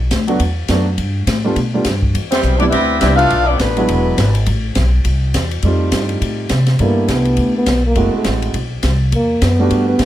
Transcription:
Already playing: B1
0.11 D2, kick, snare, hi-hat pedal, ride
0.28 F#3 A3 B3 D4 F#4, ride
0.40 E2, kick, ride
0.68 F#2 F#3 A3 B3 D4 F#4, kick, snare, hi-hat pedal, ride
0.98 G2, kick, ride
1.27 A2, kick, snare, hi-hat pedal, ride
1.44 G3 A3 B3 D4 F4
1.56 B2, kick, ride
1.74 G3 A3 B3 D4 F4
1.85 G2, kick, snare, hi-hat pedal, ride
2.03 kick
2.14 E2, ride
2.30 E3 G3 B3 C4 E4 C5, snare, ride
2.43 B1, hi-hat pedal
2.58 G3 B3 C4 D4 E4 G4 D5, ride
2.70 D2 G3 B3 C4 E4 G4 B4 E5, kick, ride
3.00 C2 G3 B3 C4 D4 E4 G4 B4 E5, kick, snare, hi-hat pedal, ride
3.16 A3 D4 F4 A4 B4 F5, ride
3.30 B1, kick, ride
3.45 F3 A3 B3 D4 F4 A4 D5
3.57 A1 D3 F3 A3 B3 D4 F4 B4, kick, snare, hi-hat pedal, ride
3.77 F#3 G#3 B3 D4 E4, ride
3.88 E1, kick, ride
4.18 G#1, kick, snare, hi-hat pedal, ride
4.35 ride
4.46 A1, kick, ride
4.75 B1, kick, snare, hi-hat pedal, ride
5.05 C2, kick, ride
5.34 E2, kick, snare, hi-hat pedal, ride
5.51 ride
5.62 F2 G3 A3 C4 D#4 F4, kick, ride
5.92 G2, kick, snare, hi-hat pedal, ride
6.09 ride
6.21 A2, kick, ride
6.49 C3, kick, snare, hi-hat pedal, ride
6.67 snare, ride
6.79 G2 G3 A3 A#3 B3 D4 E4, kick, ride
7.08 C2 B3, kick, snare, hi-hat pedal, ride
7.25 ride
7.37 D2, kick, ride
7.58 B3
7.66 B1, kick, snare, hi-hat pedal, ride
7.87 A#3
7.95 F#1 G#3 A3 C4 E4 F#4, kick, ride
8.14 A3, muted upright bass stroke
8.24 A1, kick, snare, hi-hat pedal, ride
8.42 ride
8.54 B1, kick, ride
8.83 C2, kick, snare, hi-hat pedal, ride
9.12 E2 A#3, kick, ride
9.42 F#2 B3, kick, snare, hi-hat pedal, ride
9.59 G3 A3 B3 D4 F#4
9.71 G2, kick, ride
9.89 B3
9.99 A2, kick, snare, hi-hat pedal, ride

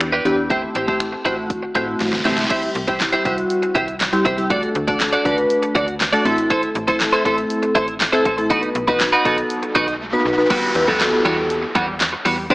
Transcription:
0.00 E2, finger snap, muted clean electric guitar stroke, closed hi-hat
0.12 D4 G4 B4
0.25 E2 B3 D4 E4 G4 B4, closed hi-hat
0.38 muted clean electric guitar stroke
0.50 A3 C4 E4 G4 C5, kick, closed hi-hat
0.63 muted clean electric guitar stroke
0.75 A1 E4 G4 C5, closed hi-hat
0.87 A3 C4 E4 G4 C5, kick
1.00 finger snap, muted clean electric guitar stroke, closed hi-hat
1.13 muted clean electric guitar stroke
1.25 A1 A3 C4 E4 F#4 G4 C5, kick, closed hi-hat
1.38 muted clean electric guitar stroke
1.50 kick, closed hi-hat
1.63 muted clean electric guitar stroke
1.75 A2 A3 C4 E4 F#4 G4 C5, kick, closed hi-hat
1.88 muted clean electric guitar stroke
2.00 A1, muted clean electric guitar stroke, snare, closed hi-hat
2.07 snare
2.13 muted clean electric guitar stroke, snare
2.19 snare
2.25 A1 A3 C4 E4 G4 C5, snare, closed hi-hat
2.32 snare
2.38 muted clean electric guitar stroke, snare
2.44 snare
2.50 G3 C4 E4 G4 C5, kick, closed hi-hat, crash
2.63 muted clean electric guitar stroke, closed hi-hat
2.75 C2, muted clean electric guitar stroke, closed hi-hat
2.88 G3 C4 E4 G4 C5, kick, closed hi-hat
3.00 muted clean electric guitar stroke, snare, clap, closed hi-hat
3.13 E4 G4 C5, closed hi-hat
3.25 C2 G3 C4 E4 F#4 G4 C5, kick, closed hi-hat
3.38 muted clean electric guitar stroke, closed hi-hat
3.50 closed hi-hat
3.63 muted clean electric guitar stroke, closed hi-hat
3.75 C2 E4 G4 C5, kick, closed hi-hat
3.88 muted clean electric guitar stroke, closed hi-hat
4.00 muted clean electric guitar stroke, snare, clap, closed hi-hat
4.13 G3 C4 E4 G4, muted clean electric guitar stroke, closed hi-hat
4.25 C2 E4 G4 C5, kick, closed hi-hat
4.38 G3 C4 E4 G4, muted clean electric guitar stroke, closed hi-hat
4.50 A3 D4 F#4 A4 D5, kick, closed hi-hat
4.63 muted clean electric guitar stroke, closed hi-hat
4.75 D2, muted clean electric guitar stroke, closed hi-hat
4.88 A3 D4 F#4 A4 D5, kick, closed hi-hat
5.00 muted clean electric guitar stroke, snare, clap, closed hi-hat
5.13 F#4 A4 D5, closed hi-hat
5.25 D2 A3 D4 F#4 A4 B4 D5, kick, closed hi-hat
5.38 muted clean electric guitar stroke, closed hi-hat
5.50 closed hi-hat
5.63 muted clean electric guitar stroke, closed hi-hat
5.75 D2 F#4 A4 D5, kick, closed hi-hat
5.88 muted clean electric guitar stroke, closed hi-hat
6.00 muted clean electric guitar stroke, snare, clap, closed hi-hat
6.13 A3 D4 F#4 A4 D5, closed hi-hat
6.25 A1 A3 C4 E4 A4 C5, closed hi-hat
6.38 muted clean electric guitar stroke, closed hi-hat
6.50 E4 A4 C5, kick, closed hi-hat
6.63 muted clean electric guitar stroke, closed hi-hat
6.75 A1, muted clean electric guitar stroke, closed hi-hat
6.88 A3 C4 E4 A4 C5, kick, closed hi-hat
7.00 muted clean electric guitar stroke, snare, clap, closed hi-hat
7.13 E4 A4 C5, closed hi-hat
7.25 A1 A3 C4 E4 A4 C5, kick, closed hi-hat
7.38 muted clean electric guitar stroke, closed hi-hat
7.50 closed hi-hat
7.63 muted clean electric guitar stroke, closed hi-hat
7.75 A1 E4 A4 C5, kick, closed hi-hat
7.88 muted clean electric guitar stroke, closed hi-hat
8.00 muted clean electric guitar stroke, snare, clap, closed hi-hat
8.12 A3 C4 E4 A4 C5, closed hi-hat
8.25 A1 E4 A4 C5, kick, closed hi-hat
8.38 A3 C4 E4 A4, muted clean electric guitar stroke, closed hi-hat
8.50 B3 D#4 F#4 B4, kick, closed hi-hat, riser
8.63 muted clean electric guitar stroke, closed hi-hat
8.75 B1, muted clean electric guitar stroke, closed hi-hat
8.88 B3 D#4 F#4 B4, kick, closed hi-hat
9.00 muted clean electric guitar stroke, snare, clap, closed hi-hat
9.12 D#4 F#4 B4, closed hi-hat
9.25 B1 B3 D#4 F#4 A4 B4, kick, closed hi-hat
9.38 muted clean electric guitar stroke, closed hi-hat
9.50 closed hi-hat
9.63 muted clean electric guitar stroke, closed hi-hat
9.75 B1 D#4 F#4 B4, kick, closed hi-hat
9.88 muted clean electric guitar stroke, closed hi-hat
10.13 B3 D#4 F#4 B4
10.25 B1
10.38 B3 D#4 F#4 B4
10.50 G3 B3 E4 F#4 G4 B4, kick, closed hi-hat, crash, downlifter
10.75 E2 B3 E4 F#4 G4 B4, muted clean electric guitar stroke, closed hi-hat
10.88 G3 B3 E4 F#4 G4 A4, kick
11.00 snare, clap, closed hi-hat
11.13 muted clean electric guitar stroke
11.25 E2 G3 B3 F#4, closed hi-hat
11.38 muted clean electric guitar stroke
11.50 closed hi-hat
11.63 muted clean electric guitar stroke
11.75 E2 G3 B3 F#4, kick, closed hi-hat
11.88 muted clean electric guitar stroke
12.00 muted clean electric guitar stroke, snare, clap, closed hi-hat
12.13 muted clean electric guitar stroke
12.25 E2 G3 B3 F#4, open hi-hat
12.38 muted clean electric guitar stroke
12.50 C4 D4 G4 A4 C5, kick, closed hi-hat

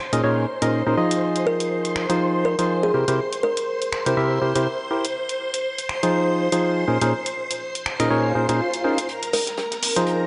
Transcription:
Already playing: C5 C6
0.13 A#2 C#4 D#4 G#4 A#4 D#5, closed hi-hat
0.24 A#2 C#4 D#4 G#4 A#4 C#5
0.62 A#2 C#4 D#4 G#4 A#4 D#5, closed hi-hat
0.87 A#2 C#4 D#4 G#4 A#4 C5
0.97 F3 D#4 F4 G#4 D#5
1.11 closed hi-hat
1.22 C5 C6
1.36 closed hi-hat
1.47 A#4
1.60 closed hi-hat
1.85 closed hi-hat
1.96 finger snap
2.10 F3 D#4 F4 G#4 C5, closed hi-hat
2.45 A#4
2.59 F3 D#4 F4 G#4 C5, closed hi-hat
2.83 G#4
2.94 C3 E4 G4 A#4 C5
3.08 C3 E4 G4 A#4 C5, closed hi-hat
3.33 closed hi-hat
3.43 A#4
3.57 closed hi-hat
3.82 closed hi-hat
3.93 finger snap
4.06 C3 E4 G4 A#4 C5, closed hi-hat
4.17 C3 E4 G4 A#4 E5
4.42 C3 E4 G4 A#4 C5
4.55 C3 E4 G4 A#4 C5, closed hi-hat
4.91 E4 G4 A#4 C5
5.05 closed hi-hat
5.29 closed hi-hat
5.54 closed hi-hat
5.78 closed hi-hat
5.89 finger snap
6.03 F3 D#4 F4 G#4 C5, closed hi-hat
6.52 F3 D#4 F4 G#4 C5, closed hi-hat
6.88 A#2 C#4 D#4 G#4 A#4 C5
7.01 A#2 C#4 D#4 G#4 A#4 C5, closed hi-hat
7.26 closed hi-hat
7.51 closed hi-hat
7.75 closed hi-hat
7.86 finger snap
8.00 A#2 C#4 D#4 G#4 A#4 D#5, finger snap, closed hi-hat
8.10 A#2 C#4 D#4 G#4 A#4 C#5, swell
8.35 A#2 C#4 D#4 G#4 A#4 C5
8.49 A#2 C#4 D#4 G#4 A#4 C5, closed hi-hat
8.74 closed hi-hat
8.84 C#4 D#4 G#4 A#4 C5
8.98 closed hi-hat
9.09 A#4 A#5, closed hi-hat, riser
9.23 closed hi-hat
9.33 A#4, closed hi-hat, open hi-hat
9.47 snare, closed hi-hat
9.57 snare, closed hi-hat
9.72 snare, closed hi-hat
9.82 closed hi-hat, open hi-hat
9.96 F3 D#4 F4 G#4 C5, snare, closed hi-hat
10.07 closed hi-hat

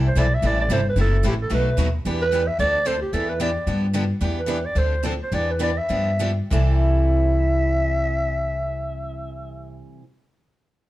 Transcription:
Already playing: C2
0.08 C5
0.15 B1 C3 E3 G3 C4 E4 A4 D5
0.34 E5
0.42 A1 C3 E3 G3 C4 E4 A4
0.46 D5
0.61 D5
0.69 G1 C3 E3 G3 C4 E4 A4
0.73 C5
0.89 B4
0.96 F#1 C3 E3 F#3 A3 C4 E4 F#4 A4
1.01 A4
1.23 A1 C3 E3 F#3 A3 C4 E4 F#4 A4
1.28 G4
1.42 A4
1.50 B1 B2 F#3 A3 D#4 F#4 B4
1.54 B4
1.77 D#2 B2 F#3 A3 D#4 F#4 B4
2.05 E2 E3 B3 D4 G4 B4
2.22 B4
2.33 E3 B3 D4 G4 B4
2.47 E5
2.58 D2 D3 F3 C4 D4 A4 D5
2.86 D3 F3 C4 D4 A4 C5
3.01 G4
3.13 E2 E3 B3 D4 G4 A4 B4
3.29 B4
3.40 E3 B3 D4 G4 B4 D5
3.67 G2 D3 F3 B3 D4 G4
3.93 D3 F3 B3 D4 G4
4.21 E2 E3 B3 D4 G4 B4
4.39 B4
4.47 E3 B3 D4 G4 B4
4.65 D5
4.75 D2 D3 F3 C4 D4 A4 C5
5.03 D3 F3 C4 D4 A4
5.23 C5
5.32 E2 E3 B3 D4 G4 B4 D5
5.51 B4
5.59 E3 B3 D4 G4 B4
5.63 D5
5.78 E5
5.89 G2 D3 F3 B3 D4 G4
6.19 D3 F3 B3 D4 G4
6.51 C2 C3 E3 G3 C4 E4 A4 E5

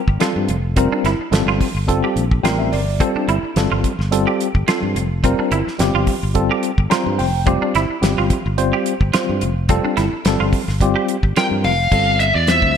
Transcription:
0.08 G1, kick
0.20 G3 C4 F4 A4, muted fingered electric bass stroke, snare, closed hi-hat
0.36 G2
0.49 F1, closed hi-hat
0.76 G3 C4 F4 A#4, kick, closed hi-hat
0.92 D4, muted fingered electric bass stroke
1.04 G1 E4, snare, closed hi-hat
1.19 muted fingered electric bass stroke
1.31 G1 G3 C4 F4 A4, snare, closed hi-hat
1.46 G1 F4
1.61 kick, open hi-hat
1.75 G1
1.87 G3 C4 F4 A4, kick, closed hi-hat
2.04 G4
2.16 A#1, closed hi-hat
2.31 kick
2.43 A1 G3 C4 F4 A#4 G5, snare, closed hi-hat
2.59 E5
2.72 G1 D5, open hi-hat
3.00 G3 C4 F4 A4, kick, closed hi-hat
3.15 D4, muted fingered electric bass stroke
3.28 G1 E4, closed hi-hat
3.43 muted fingered electric bass stroke
3.56 G1 G3 C4 F4 A4, snare, closed hi-hat
3.71 G1 F4
3.84 kick, closed hi-hat
3.99 G1, snare
4.11 G3 C4 F4 A4, closed hi-hat
4.27 G4
4.40 closed hi-hat
4.55 G1, kick
4.68 G3 C4 F4 A4, muted fingered electric bass stroke, snare, closed hi-hat
4.83 G2
4.95 F1, closed hi-hat
5.24 G3 C4 F4 A#4, kick, closed hi-hat
5.39 D4, muted fingered electric bass stroke
5.52 G1 E4, closed hi-hat
5.67 muted fingered electric bass stroke, snare
5.78 G1 G3 C4 F4 G4, snare, closed hi-hat
5.94 G1 F4
6.07 kick, open hi-hat
6.23 G1
6.34 G3 C4 F4 A4, kick, closed hi-hat
6.51 G4
6.63 closed hi-hat
6.78 G1, kick
6.90 G3 C4 F4 C5 A#5, snare, closed hi-hat
7.06 G2
7.19 F1 G5, open hi-hat
7.45 G3 C4 F4 G4, kick, closed hi-hat
7.62 D4
7.75 G1 E4, snare, closed hi-hat
7.90 muted fingered electric bass stroke
8.01 G1 G3 C4 F4 G4, snare, closed hi-hat
8.18 G1 F4
8.30 kick, closed hi-hat
8.46 G1
8.57 G3 C4 F4 C5, closed hi-hat
8.73 G4
8.86 closed hi-hat
9.01 G1, kick
9.13 G3 C4 F4 C5, snare, closed hi-hat
9.29 G2
9.41 F1, closed hi-hat
9.69 G3 C4 F4 A4, kick, closed hi-hat
9.85 D4, muted fingered electric bass stroke
9.97 G1 E4, snare, closed hi-hat
10.13 muted fingered electric bass stroke
10.25 G1 G3 C4 F4 A4, snare, closed hi-hat
10.40 G1 F4
10.53 kick, open hi-hat
10.68 G1, snare
10.81 G3 C4 F4 G4, kick, closed hi-hat
10.96 G4
11.09 closed hi-hat
11.23 G1, kick
11.36 G3 C4 F4 A#4 G5, snare, closed hi-hat
11.51 G2
11.64 F1 F5, open hi-hat
11.92 G1 G3 C4 F4 A4, kick, crash
12.20 E5, closed hi-hat
12.35 E2 D5
12.47 G3 C4 F4 C5 E5, snare, closed hi-hat
12.62 D2, kick

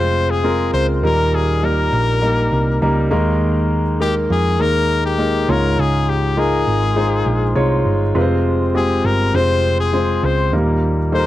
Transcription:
Already playing: F1 C3 G#3 C4 F4 C5
0.30 G#4
0.44 G#3 C4 F4 A#4
0.74 C#2 C5
1.03 D#2 A#2 G3 A#3 D#4 A#4
1.35 G#4
1.63 G3 A#3 D#4 A#4
1.93 A#1
2.22 G3 A#3 D#4 A#4
2.52 C2
2.82 C#2 G3 A#3 D#4 A#4
3.11 D#2 D#3 G#3 A#3 D#4 A#4
4.00 G#3 A#3 D#4 G4 A#4
4.30 F2 G#4
4.59 D#2 G#3 A#3 D#4 A#4
5.06 G4
5.18 G#3 A#3 D#4 A#4
5.49 C#2 G#2 G#3 D#4 F4 A#4 C#5
5.78 C#2 G#4
6.09 G4
6.37 G#3 D#4 F4 G#4 A#4
6.67 G#1
6.96 G#3 D#4 F4 C5
7.26 A#1
7.55 C2 G#3 D#4 F4 C#5
7.85 G1
8.15 F1 C3 G#3 C4 F4 B4
8.22 C5
8.74 G#3 C4 F4 G4 G#4
9.05 G1 A#4
9.34 F1 G#3 C4 F4 C5
9.80 G#4
9.93 G#3 C4 F4 C5
10.23 C#2 C5
10.53 D#2 A#2 G3 A#3 D#4 A#4
11.12 G3 A#3 D#4 A4 C5
11.19 A#4

